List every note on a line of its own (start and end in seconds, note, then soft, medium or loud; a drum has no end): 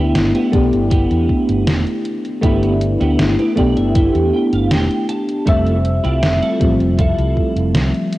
0.00 0.12 D2 loud
0.00 0.48 A3 loud
0.00 0.15 B3 medium
0.00 0.49 B3 medium
0.00 0.49 D4 medium
0.00 0.15 E4 medium
0.00 0.50 E4 loud
0.00 0.15 G4 medium
0.15 0.31 G1 medium
0.15 snare loud
0.15 closed hi-hat loud
0.35 0.63 B3 medium
0.35 0.63 E4 medium
0.35 0.63 G4 medium
0.35 closed hi-hat soft
0.52 0.69 B1 medium
0.52 2.38 A3 medium
0.52 2.39 B3 medium
0.52 2.39 D4 medium
0.52 2.40 G4 loud
0.52 kick loud
0.52 closed hi-hat medium
0.73 1.04 G1 medium
0.73 closed hi-hat soft
0.91 1.67 B3 medium
0.91 1.67 E4 medium
0.91 1.67 G4 medium
0.91 kick loud
0.91 closed hi-hat medium
1.11 1.26 E2 medium
1.11 closed hi-hat soft
1.29 kick medium
1.49 1.67 G1 medium
1.49 closed hi-hat soft
1.67 1.83 E1 medium
1.67 snare loud
1.67 closed hi-hat medium
1.87 closed hi-hat soft
2.05 closed hi-hat medium
2.25 closed hi-hat soft
2.41 2.95 G1 loud
2.41 3.52 A3 loud
2.41 3.52 B3 medium
2.41 2.72 B3 loud
2.41 3.53 D4 medium
2.41 2.72 E4 medium
2.41 3.53 E4 loud
2.41 2.72 G4 loud
2.41 kick loud
2.41 closed hi-hat medium
2.63 closed hi-hat soft
2.81 closed hi-hat medium
3.00 3.16 D2 loud
3.00 3.19 B3 medium
3.00 3.19 E4 medium
3.00 3.19 G4 medium
3.00 closed hi-hat soft
3.19 3.35 G1 loud
3.19 snare loud
3.19 closed hi-hat loud
3.39 3.67 B3 medium
3.39 3.67 E4 medium
3.39 3.67 G4 medium
3.39 closed hi-hat soft
3.56 3.73 B1 medium
3.56 5.42 A3 medium
3.56 5.42 B3 medium
3.56 5.43 D4 medium
3.56 5.43 G4 loud
3.56 3.75 D5 medium
3.56 kick medium
3.56 closed hi-hat medium
3.77 4.08 G1 medium
3.77 3.94 E5 medium
3.77 closed hi-hat soft
3.95 4.71 B3 medium
3.95 4.71 E4 medium
3.95 4.71 G4 medium
3.95 4.30 E5 medium
3.95 kick loud
3.95 closed hi-hat medium
4.15 4.30 E2 medium
4.15 closed hi-hat soft
4.33 4.52 G5 medium
4.53 4.71 G1 medium
4.53 4.70 F5 medium
4.53 closed hi-hat soft
4.71 4.87 E1 medium
4.71 5.06 G5 medium
4.71 snare loud
4.71 closed hi-hat medium
4.91 closed hi-hat soft
5.09 5.44 A5 medium
5.09 closed hi-hat medium
5.29 closed hi-hat soft
5.46 5.99 F1 loud
5.46 6.56 G3 medium
5.46 6.56 A3 medium
5.46 6.57 C4 medium
5.46 5.76 E4 medium
5.46 5.76 F4 medium
5.46 5.76 A4 loud
5.46 6.57 E5 loud
5.46 kick loud
5.46 closed hi-hat medium
5.67 closed hi-hat soft
5.85 closed hi-hat medium
6.04 6.20 C2 loud
6.04 6.23 E4 medium
6.04 6.23 F4 medium
6.04 6.23 G4 medium
6.04 closed hi-hat soft
6.23 6.39 F1 loud
6.23 snare loud
6.23 closed hi-hat loud
6.42 6.71 E4 medium
6.42 6.71 F4 medium
6.42 6.71 A4 medium
6.42 closed hi-hat soft
6.60 6.77 A1 medium
6.60 8.18 F3 loud
6.60 8.18 G3 medium
6.60 8.18 A3 medium
6.60 8.18 C4 medium
6.60 kick loud
6.60 closed hi-hat medium
6.80 7.11 F1 medium
6.80 closed hi-hat soft
6.98 7.74 E4 medium
6.98 7.75 F4 medium
6.98 7.75 A4 loud
6.98 kick loud
6.98 closed hi-hat medium
7.18 7.33 C2 medium
7.18 closed hi-hat soft
7.37 kick medium
7.56 7.76 F1 medium
7.56 closed hi-hat soft
7.74 7.91 C2 medium
7.74 snare loud
7.74 closed hi-hat loud
7.94 closed hi-hat soft
8.13 closed hi-hat medium